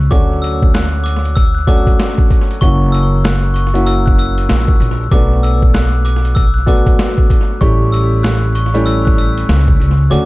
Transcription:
0.10 upright bass D2, upright piano F#3 A3 C#4 D4 F#4, glockenspiel D6, kick, closed hi-hat
0.42 glockenspiel E6, closed hi-hat
0.62 kick
0.74 glockenspiel F#6, snare, closed hi-hat
1.04 glockenspiel D6, closed hi-hat
1.25 closed hi-hat
1.36 glockenspiel E6, kick, closed hi-hat
1.55 glockenspiel F#6
1.67 upright piano F#3 A3 C#4 D4 F#4, glockenspiel D6, kick, closed hi-hat
1.87 kick, closed hi-hat
2.00 snare, closed hi-hat
2.18 kick
2.30 kick, closed hi-hat
2.51 closed hi-hat
2.61 upright bass F#1, upright piano F#3 A#3 C#4 E4 F#4, glockenspiel C#6, kick, closed hi-hat
2.92 glockenspiel E6, closed hi-hat
3.24 glockenspiel F#6, snare, closed hi-hat
3.54 glockenspiel C#6, closed hi-hat
3.74 upright piano F#3 A#3 C#4 E4 F#4, closed hi-hat
3.86 glockenspiel E6, closed hi-hat
4.06 glockenspiel F#6, kick
4.19 glockenspiel E6, closed hi-hat
4.38 closed hi-hat
4.49 upright bass A#1, snare, closed hi-hat
4.68 kick
4.80 upright bass A#1, closed hi-hat
5.12 upright bass B1, upright piano F#3 A3 B3 D4 F#4, glockenspiel D6, kick, closed hi-hat
5.43 glockenspiel E6, closed hi-hat
5.62 kick
5.74 glockenspiel F#6, snare, closed hi-hat
6.05 glockenspiel D6, closed hi-hat
6.25 closed hi-hat
6.35 glockenspiel E6, kick, closed hi-hat
6.54 glockenspiel F#6
6.66 upright piano F#3 A3 B3 D4 F#4, glockenspiel D6, kick, closed hi-hat
6.86 kick, closed hi-hat
6.99 snare, closed hi-hat
7.18 kick
7.30 kick, closed hi-hat
7.61 upright bass A1, upright piano G3 A3 C#4 E4 G4, glockenspiel C#6, kick, closed hi-hat
7.92 glockenspiel E6, closed hi-hat
8.23 glockenspiel F#6, snare, closed hi-hat
8.55 glockenspiel C#6, closed hi-hat
8.74 upright piano G3 A3 C#4 E4 G4, closed hi-hat
8.86 glockenspiel E6, closed hi-hat
9.05 glockenspiel F#6, kick
9.18 glockenspiel E6, closed hi-hat
9.38 closed hi-hat
9.49 upright bass C#2, snare, closed hi-hat
9.68 kick
9.80 upright bass C#2, closed hi-hat
10.10 upright bass D2, upright piano F#3 A3 C#4 D4 F#4, glockenspiel D6, closed hi-hat

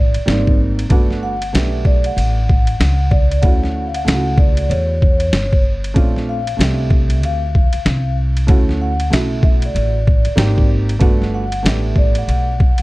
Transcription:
Already playing: upright bass A1, vibraphone D5
0.14 muted upright bass stroke, ride
0.26 upright bass G#1, upright piano G3 A#3 C4 D#4, snare, hi-hat pedal, ride
0.47 kick
0.79 ride
0.89 upright bass G1, upright piano A3 B3 D4 F#4, kick, ride
1.11 snare
1.23 vibraphone F#5
1.42 ride
1.53 upright bass B1, upright piano A3 B3 D4 G4, vibraphone E5, snare, hi-hat pedal, ride
1.85 vibraphone D5, kick
2.04 vibraphone F#5, ride
2.17 upright bass A1, ride
2.49 kick
2.67 ride
2.80 upright bass C#2, snare, hi-hat pedal, ride
3.11 vibraphone D5, kick
3.31 vibraphone D5, ride
3.42 upright bass D2, upright piano A3 C#4 E4 F#4, vibraphone F#5, kick, ride
3.63 snare
3.87 vibraphone F5
3.94 vibraphone F#5, ride
4.05 upright bass C#2, upright piano C#3 A3 E4 F4, snare, hi-hat pedal, ride
4.14 upright piano F#4
4.38 vibraphone D5, kick
4.57 ride
4.70 upright bass E2, vibraphone C#5, ride
5.02 kick
5.20 ride
5.33 upright bass G1, snare, hi-hat pedal, ride
5.53 kick
5.84 ride
5.94 upright bass A#1, upright piano A3 C4 D4 F4, kick, ride
6.16 snare
6.29 vibraphone F5
6.47 ride
6.57 upright bass C2, upright piano A3 C4 D4 G4, hi-hat pedal, ride
6.61 vibraphone E5, snare
6.90 kick
7.10 ride
7.22 upright bass D2, vibraphone F5, ride
7.55 kick
7.73 muted upright bass stroke, ride
7.86 upright bass C2, snare, hi-hat pedal, ride
8.37 ride
8.47 upright bass D2, upright piano A3 C#4 E4 F#4, kick, ride
8.69 snare
8.82 vibraphone F#5
9.00 ride
9.10 upright bass B1, upright piano C#3 A3 E4 F#4, vibraphone E5, snare, hi-hat pedal, ride
9.43 vibraphone E5, kick
9.62 vibraphone D5, ride
9.75 upright bass A1, ride
10.07 kick
10.25 muted upright bass stroke, ride
10.36 upright bass G#1, upright piano A#3 C4 D#4 G4, snare, hi-hat pedal, ride
10.58 kick
10.89 ride
10.99 upright bass G1, upright piano A3 B3 D4 F#4, kick, ride
11.22 snare
11.34 vibraphone F#5
11.52 ride
11.63 upright bass A1, upright piano A3 B3 D4 G4, vibraphone E5, snare, hi-hat pedal, ride
11.96 vibraphone D5, kick
12.15 vibraphone F#5, ride
12.28 upright bass B1, ride
12.60 kick
12.78 ride

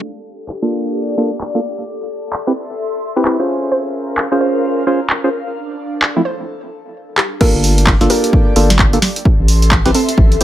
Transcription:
Already playing: analog synth pad D4 F5
0.02 analog synth pad G4
0.39 analog synth pad D5
0.48 clap
0.62 synth stab A#3 D4 F4 A4
1.17 synth stab A#3 D4 F4 A4
1.41 clap
1.55 synth stab A#3 D4 F4 A4
1.64 analog synth pad A4
2.25 analog synth pad E5
2.33 clap
2.39 analog synth pad C6
2.47 synth stab C4 E4 G4 B4
3.16 synth stab C4 E4 G4 B4
3.25 synth stab C4 E4 G4 B4, clap
3.39 synth stab C#4 F4 G#4 C5
3.48 analog synth pad A#4
3.69 synth pluck C5, analog synth pad F5
4.18 clap
4.32 synth stab C#4 F4 G#4 C5
4.41 synth pluck C5
4.87 synth stab C#4 F4 G#4 C5
5.10 clap
5.24 synth stab C#4 F4 G#4 C5
5.33 analog synth pad D4
6.02 clap
6.16 synth stab F3 A3 C4 E4
6.25 synth pluck C5
7.18 synth pluck G4, clap
7.41 synth stab A#3 D4 F4 A4, synth pluck G4 A#4, analog synth pad G4, kick, crash
7.55 sub bass G1
7.62 analog synth pad D5, open hi-hat
7.78 closed hi-hat
7.87 kick, clap
8.01 sub bass G1, synth stab A#3 D4 F4 A4, snare, closed hi-hat
8.10 synth pluck G4 A#4, open hi-hat
8.24 closed hi-hat
8.33 kick
8.56 sub bass G1, synth stab A#3 D4 F4 A4, open hi-hat
8.70 snare, closed hi-hat
8.79 kick, clap
8.93 synth stab A#3 D4 F4 A4, closed hi-hat
9.02 analog synth pad A4, snare, open hi-hat
9.16 analog synth pad C6, closed hi-hat
9.25 kick
9.39 sub bass A1
9.48 open hi-hat
9.55 analog synth pad E5
9.62 closed hi-hat
9.71 kick, clap
9.85 sub bass A1, synth stab C4 E4 G4 B4, snare, closed hi-hat
9.94 synth pluck C4 A4, open hi-hat
10.09 closed hi-hat
10.18 sub bass A1, kick
10.32 closed hi-hat

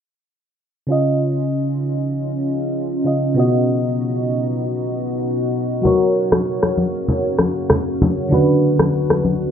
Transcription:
0.87 fm electric piano C#3 C#4 F4, ambient pad C#3 C#4 D#4 F4
0.92 fm electric piano D#5
3.04 fm electric piano C#3 C#4 F4 D#5
3.34 fm electric piano B2 B3 F#4, ambient pad B2 B3 F#4
3.39 fm electric piano D#5
5.82 ambient pad F#2 C#3 A#3, fm electric piano F#3 F#4 A#4, low conga, shaker
5.87 fm electric piano C#5
6.15 shaker
6.32 cross-stick, high conga, shaker
6.46 shaker
6.63 cross-stick, high conga
6.77 high conga, shaker
6.94 shaker
7.08 low conga, shaker
7.39 cross-stick, high conga, shaker
7.56 shaker
7.70 cross-stick, low conga, shaker
8.01 high conga, low conga, shaker
8.18 shaker
8.29 ambient pad D2 D3 B3, fm electric piano D3 D4 F#4, low conga, shaker
8.34 fm electric piano B4
8.62 shaker
8.79 cross-stick, high conga, shaker
8.93 shaker
9.10 cross-stick, high conga
9.24 high conga, shaker
9.42 shaker

